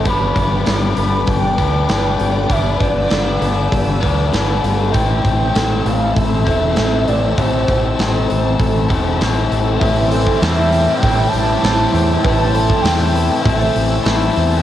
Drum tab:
HH |o-o-o-o-o-o-o-o-|o-o-o-o-o-o-o-o-|o-o-o-o-o-o-o-o-|o-o-o-o-o-o-o-o-|
SD |----o-------o---|----o-------o---|----o-------o---|----o-------o---|
BD |o-o-----o-o-----|o-o-----o-o-----|o-o-----o-o-----|o-o-----o-o-----|

HH |o-o-o-o-o-o-o-o-|o-o-o-o-o-o-o-o-|
SD |----o-------o---|----o-------o---|
BD |o--o----o-------|o--o----o-------|